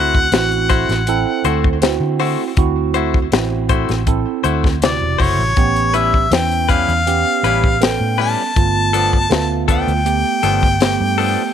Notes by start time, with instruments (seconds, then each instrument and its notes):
Already playing: fingered electric bass D2, clean electric guitar A3 E4 F#4 C5, tine electric piano C4 E4 F#4, harmonica F#5
0.15 kick
0.32 fingered electric bass A1, tine electric piano C4 E4 F#4, snare, closed hi-hat
0.52 closed hi-hat
0.70 clean electric guitar A3 E4 F#4 C5, kick, closed hi-hat
0.89 fingered electric bass A1, snare, closed hi-hat
1.07 tine electric piano C4 E4 A4, closed hi-hat
1.44 fingered electric bass D2, clean electric guitar A3 E4 F#4 C5, closed hi-hat
1.64 kick
1.82 tine electric piano C4 E4 F#4, snare, closed hi-hat
2.00 fingered electric bass D3
2.19 clean electric guitar A3 E4 F#4 C5, open hi-hat
2.57 fingered electric bass D2, tine electric piano C4 E4 F#4, kick, closed hi-hat
2.94 clean electric guitar A3 E4 F#4 C5, closed hi-hat
3.14 kick
3.32 fingered electric bass A1, tine electric piano C4 E4 F#4, snare, closed hi-hat
3.69 clean electric guitar A3 E4 F#4 C5, kick, closed hi-hat
3.89 fingered electric bass A1, snare, closed hi-hat
4.07 tine electric piano C4 E4 A4, kick, closed hi-hat
4.44 fingered electric bass D2, clean electric guitar A3 E4 F#4 C5, closed hi-hat
4.64 kick, snare
4.82 tine electric piano C3 E4 F#4, harmonica D5, snare, closed hi-hat
5.01 fingered electric bass E1
5.18 fingered electric bass F#1, clean electric guitar A3 E4 F#4 C5, harmonica C#5, kick, open hi-hat
5.39 fingered electric bass A1
5.57 fingered electric bass A1, tine electric piano B3 C#4 G4, kick, closed hi-hat
5.76 closed hi-hat
5.94 clean electric guitar G3 C#4 E4 B4, harmonica E5, closed hi-hat
6.14 kick
6.31 fingered electric bass E2, tine electric piano E3 B3 C#4, harmonica G5, snare, closed hi-hat
6.51 closed hi-hat
6.69 clean electric guitar G3 C#4 E4 B4, harmonica F5, kick, closed hi-hat
6.88 fingered electric bass E2, closed hi-hat
7.07 tine electric piano B3 C#4 G4, closed hi-hat
7.43 fingered electric bass A1, clean electric guitar G3 C#4 E4 B4, closed hi-hat
7.64 kick
7.81 tine electric piano B3 C#4 A4, harmonica G5, snare, closed hi-hat
8.00 fingered electric bass A2
8.18 clean electric guitar G3 C#4 E4 B4, harmonica A5, open hi-hat
8.56 fingered electric bass G1, tine electric piano A3 B3 F4, kick, closed hi-hat
8.93 clean electric guitar F3 B3 D4 A4, closed hi-hat
9.13 kick
9.30 fingered electric bass D2, tine electric piano A3 B3 F4, snare, closed hi-hat
9.68 clean electric guitar F3 B3 D4 A4, harmonica G5, kick, closed hi-hat
9.87 fingered electric bass D2, closed hi-hat
10.05 tine electric piano A3 B3 G4, closed hi-hat
10.43 fingered electric bass G1, clean electric guitar F3 B3 D4 A4, closed hi-hat
10.63 kick
10.80 tine electric piano A3 B3 G4, snare, closed hi-hat
11.00 fingered electric bass G2
11.18 clean electric guitar F3 B3 D4 A4, open hi-hat